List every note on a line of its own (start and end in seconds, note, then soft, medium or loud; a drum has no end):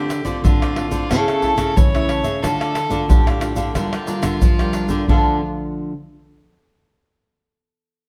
0.00 0.20 D3 medium
0.00 0.41 D3 medium
0.00 0.40 G4 medium
0.10 muted cavaquinho stroke soft
0.10 pandeiro medium
0.10 tamborim medium
0.10 shaker medium
0.25 0.40 D3 medium
0.25 0.71 A3 medium
0.25 0.71 C4 medium
0.25 0.71 F4 medium
0.25 0.42 A4 medium
0.25 0.42 C5 medium
0.25 0.42 D5 medium
0.25 pandeiro medium
0.25 shaker medium
0.25 surdo soft
0.44 1.07 A2 medium
0.44 0.86 D3 medium
0.44 1.11 F4 medium
0.44 0.60 F4 medium
0.44 0.60 A4 medium
0.44 0.60 C5 medium
0.44 0.61 D5 medium
0.44 pandeiro medium
0.44 shaker medium
0.44 surdo medium
0.62 0.92 A4 medium
0.62 0.91 C5 medium
0.62 0.90 D5 medium
0.62 pandeiro soft
0.62 tamborim medium
0.62 shaker soft
0.76 1.05 A3 medium
0.76 1.05 C4 medium
0.76 1.05 F4 medium
0.76 pandeiro medium
0.76 tamborim medium
0.91 1.09 D3 medium
0.91 1.09 A4 medium
0.91 1.09 C5 medium
0.91 1.08 D5 medium
0.91 pandeiro medium
0.91 shaker medium
0.91 surdo soft
1.10 1.74 C#3 medium
1.10 1.53 C#3 loud
1.10 1.30 A3 medium
1.10 1.30 C#4 medium
1.10 1.31 E4 medium
1.10 1.78 A4 loud
1.10 1.26 A4 soft
1.10 1.27 C#5 medium
1.10 1.27 E5 medium
1.10 pandeiro medium
1.10 tamborim medium
1.10 shaker medium
1.10 surdo medium
1.28 1.42 C#5 medium
1.28 1.42 E5 medium
1.28 pandeiro soft
1.28 tamborim medium
1.28 shaker soft
1.42 1.88 A3 medium
1.42 1.88 C#4 medium
1.42 1.88 E4 medium
1.42 1.56 A4 medium
1.42 1.57 C#5 medium
1.42 1.57 E5 medium
1.42 pandeiro medium
1.42 surdo soft
1.58 1.73 C#3 loud
1.58 muted cavaquinho stroke soft
1.58 pandeiro medium
1.58 tamborim medium
1.58 shaker medium
1.58 surdo soft
1.76 2.40 C#3 medium
1.76 2.19 E3 medium
1.76 2.44 C#5 loud
1.76 pandeiro medium
1.76 shaker medium
1.76 surdo loud
1.94 2.38 A3 medium
1.94 2.39 C#4 medium
1.94 2.39 E4 medium
1.94 2.08 C#5 medium
1.94 2.09 E5 medium
1.94 pandeiro soft
1.94 tamborim medium
1.94 shaker soft
2.08 2.24 A4 medium
2.08 2.24 C#5 medium
2.08 2.22 E5 medium
2.08 pandeiro medium
2.08 tamborim medium
2.24 2.39 C#3 medium
2.24 2.41 C#5 medium
2.24 2.40 E5 medium
2.24 pandeiro medium
2.24 shaker medium
2.24 surdo soft
2.42 3.06 D3 medium
2.42 2.86 D3 medium
2.42 2.74 A3 medium
2.42 2.58 D4 soft
2.42 2.75 D4 medium
2.42 2.75 F4 medium
2.42 3.10 A4 loud
2.42 2.59 A4 medium
2.42 2.59 D5 soft
2.42 2.59 F5 medium
2.42 pandeiro medium
2.42 tamborim medium
2.42 shaker medium
2.42 surdo medium
2.60 2.74 A4 medium
2.60 2.74 D5 medium
2.60 2.74 F5 medium
2.60 pandeiro soft
2.60 tamborim medium
2.60 shaker soft
2.75 muted cavaquinho stroke soft
2.75 pandeiro medium
2.75 tamborim medium
2.75 shaker medium
2.90 3.06 D3 loud
2.90 3.36 A3 medium
2.90 3.36 D4 medium
2.90 3.36 F4 medium
2.90 3.08 A4 medium
2.90 3.07 D5 medium
2.90 3.07 F5 medium
2.90 pandeiro medium
2.90 shaker medium
2.90 surdo soft
3.09 3.73 A2 medium
3.09 3.52 D3 medium
3.09 3.25 D4 medium
3.09 3.75 G4 medium
3.09 3.25 A4 medium
3.09 3.25 D5 medium
3.09 3.26 F5 medium
3.09 pandeiro medium
3.09 shaker medium
3.09 surdo loud
3.27 3.57 A4 medium
3.27 3.56 D5 medium
3.27 3.55 F5 medium
3.27 pandeiro soft
3.27 tamborim medium
3.27 shaker soft
3.41 3.61 A3 medium
3.41 3.62 D4 medium
3.41 3.62 F4 medium
3.41 pandeiro medium
3.41 tamborim medium
3.41 shaker medium
3.56 3.72 D3 medium
3.56 3.74 A4 medium
3.56 3.74 D5 medium
3.56 3.73 F5 medium
3.56 pandeiro medium
3.56 shaker medium
3.56 surdo soft
3.75 4.39 D3 medium
3.75 4.18 D3 medium
3.75 3.95 G3 medium
3.75 3.95 A#3 medium
3.75 3.91 D4 medium
3.75 5.05 F4 loud
3.75 3.96 F4 medium
3.75 3.92 A#4 medium
3.75 3.92 D5 medium
3.75 3.92 G5 medium
3.75 pandeiro medium
3.75 tamborim medium
3.75 shaker medium
3.75 surdo medium
3.93 4.07 A#4 medium
3.93 4.08 D5 medium
3.93 4.08 G5 medium
3.93 pandeiro soft
3.93 tamborim medium
3.93 shaker soft
4.07 4.53 G3 medium
4.07 4.53 A#3 medium
4.07 4.22 D4 medium
4.07 4.53 F4 medium
4.07 4.22 A#4 medium
4.07 4.23 D5 medium
4.07 4.23 G5 medium
4.07 pandeiro medium
4.07 shaker medium
4.23 4.38 D3 medium
4.23 muted cavaquinho stroke soft
4.23 pandeiro medium
4.23 tamborim medium
4.23 shaker medium
4.23 surdo soft
4.42 5.05 D3 medium
4.42 4.85 F3 medium
4.42 pandeiro medium
4.42 shaker medium
4.42 surdo medium
4.59 5.04 G3 medium
4.59 5.04 A#3 medium
4.59 5.04 F4 medium
4.59 4.73 A#4 medium
4.59 4.74 D5 medium
4.59 4.75 G5 medium
4.59 pandeiro soft
4.59 tamborim medium
4.59 shaker soft
4.73 4.90 D4 medium
4.73 4.90 A#4 medium
4.73 4.89 D5 medium
4.73 4.88 G5 medium
4.73 pandeiro medium
4.73 tamborim medium
4.73 shaker medium
4.89 5.05 D3 medium
4.89 5.07 A#4 medium
4.89 5.07 D5 medium
4.89 5.06 G5 medium
4.89 pandeiro medium
4.89 shaker medium
4.89 surdo soft
5.08 5.93 D3 medium
5.08 5.40 D3 medium
5.08 5.93 F3 medium
5.08 5.93 A3 medium
5.08 5.35 D4 medium
5.08 5.93 D4 medium
5.08 5.39 F4 medium
5.08 5.36 A4 medium
5.08 5.36 D5 medium
5.08 5.36 F5 medium
5.08 surdo loud